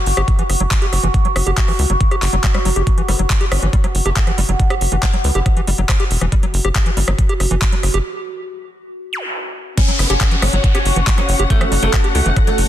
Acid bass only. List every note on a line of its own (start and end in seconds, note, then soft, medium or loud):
0.17 0.21 G4 loud
0.39 0.43 E3 medium
0.60 0.63 F#3 medium
0.82 0.86 G4 loud
1.03 1.08 E3 medium
1.25 1.28 F#3 medium
1.47 1.51 G4 loud
1.68 1.73 E3 medium
1.90 1.92 F#3 medium
2.11 2.16 G4 loud
2.33 2.36 F#3 loud
2.44 2.46 G3 medium
2.55 2.59 G3 medium
2.65 2.70 F#3 medium
2.76 2.83 G4 medium
2.98 3.02 E3 medium
3.08 3.11 G3 medium
3.19 3.22 F#3 medium
3.41 3.45 G4 loud
3.62 3.67 E3 medium
3.73 3.76 G3 medium
3.84 3.87 F#3 medium
4.06 4.10 G4 loud
4.27 4.31 E3 medium
4.38 4.41 G3 medium
4.49 4.51 F#3 medium
4.70 4.75 G4 loud
4.92 4.96 E3 medium
5.03 5.05 G3 medium
5.13 5.16 F#3 medium
5.35 5.39 G4 loud
5.57 5.61 E3 medium
5.67 5.70 G3 medium
5.78 5.81 F#3 medium
6.00 6.04 G4 loud
6.21 6.26 E3 medium
6.32 6.35 G3 medium
6.43 6.46 F#3 medium
6.65 6.69 G4 loud
6.86 6.90 E3 medium
6.97 7.00 G3 medium
7.08 7.10 F#3 medium
7.29 7.34 G4 loud
7.51 7.55 E3 medium
7.62 7.64 G3 medium
7.72 7.75 F#3 medium
7.94 7.98 G4 loud
9.78 9.80 G3 medium
9.88 9.91 F#3 medium
10.10 10.14 G4 loud
10.31 10.36 E3 medium
10.42 10.45 G3 medium
10.53 10.56 F#3 medium
10.75 10.79 G4 loud
10.96 11.01 E3 medium
11.07 11.10 G3 medium
11.18 11.20 F#3 medium
11.39 11.44 G4 loud
11.61 11.65 E3 medium
11.72 11.74 G3 medium
11.83 11.85 F#3 medium
12.04 12.08 G4 loud
12.26 12.30 E3 medium
12.37 12.39 G3 medium
12.47 12.50 F#3 medium